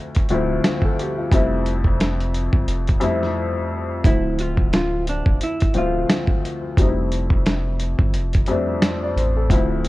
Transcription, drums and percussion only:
0.15 kick, closed hi-hat
0.29 closed hi-hat
0.64 snare, closed hi-hat
0.82 kick
0.99 closed hi-hat
1.32 kick, closed hi-hat
1.66 closed hi-hat
1.84 kick
2.00 snare, closed hi-hat
2.20 closed hi-hat
2.34 closed hi-hat
2.53 kick
2.68 closed hi-hat
2.87 kick, closed hi-hat
3.01 closed hi-hat
3.23 snare
4.04 kick, closed hi-hat
4.39 closed hi-hat
4.57 kick
4.73 snare, closed hi-hat
5.07 closed hi-hat
5.26 kick
5.41 closed hi-hat
5.60 kick, closed hi-hat
5.74 closed hi-hat
6.10 snare, closed hi-hat
6.27 kick
6.45 closed hi-hat
6.77 kick, closed hi-hat
7.12 closed hi-hat
7.30 kick
7.46 snare, closed hi-hat
7.80 closed hi-hat
7.99 kick
8.14 closed hi-hat
8.33 kick, closed hi-hat
8.46 closed hi-hat
8.82 snare, closed hi-hat
9.17 closed hi-hat
9.50 kick, closed hi-hat
9.85 closed hi-hat

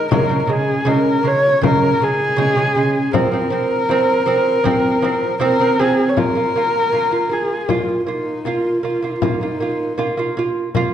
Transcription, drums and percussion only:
0.12 frame drum
0.69 frame drum
0.87 frame drum
1.26 frame drum
1.63 frame drum
2.20 frame drum
2.39 frame drum
3.14 frame drum
3.71 frame drum
3.90 frame drum
4.29 frame drum
4.66 frame drum
5.03 frame drum
5.23 frame drum
5.41 frame drum
6.17 frame drum
6.56 frame drum
6.93 frame drum
7.31 frame drum
7.69 frame drum
8.45 frame drum
8.84 frame drum
9.22 frame drum
9.61 frame drum
9.99 frame drum
10.75 frame drum

